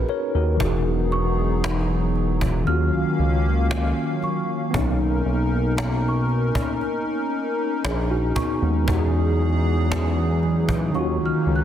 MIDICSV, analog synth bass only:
0, 0, Header, 1, 2, 480
1, 0, Start_track
1, 0, Tempo, 1034483
1, 279, Time_signature, 4, 2, 24, 8
1, 5401, End_track
2, 0, Start_track
2, 0, Title_t, "Analog synth bass"
2, 0, Program_c, 0, 38
2, 160, Note_on_c, 0, 39, 97
2, 269, Note_off_c, 0, 39, 0
2, 280, Note_on_c, 0, 28, 112
2, 1221, Note_off_c, 0, 28, 0
2, 1240, Note_on_c, 0, 39, 105
2, 1349, Note_off_c, 0, 39, 0
2, 1361, Note_on_c, 0, 37, 49
2, 1409, Note_off_c, 0, 37, 0
2, 1481, Note_on_c, 0, 37, 98
2, 1821, Note_off_c, 0, 37, 0
2, 2201, Note_on_c, 0, 35, 120
2, 2421, Note_off_c, 0, 35, 0
2, 2439, Note_on_c, 0, 35, 96
2, 3021, Note_off_c, 0, 35, 0
2, 3640, Note_on_c, 0, 34, 91
2, 3861, Note_off_c, 0, 34, 0
2, 4000, Note_on_c, 0, 39, 95
2, 4109, Note_off_c, 0, 39, 0
2, 4119, Note_on_c, 0, 40, 103
2, 5061, Note_off_c, 0, 40, 0
2, 5080, Note_on_c, 0, 39, 100
2, 5189, Note_off_c, 0, 39, 0
2, 5200, Note_on_c, 0, 37, 49
2, 5248, Note_off_c, 0, 37, 0
2, 5319, Note_on_c, 0, 37, 89
2, 5401, Note_off_c, 0, 37, 0
2, 5401, End_track
0, 0, End_of_file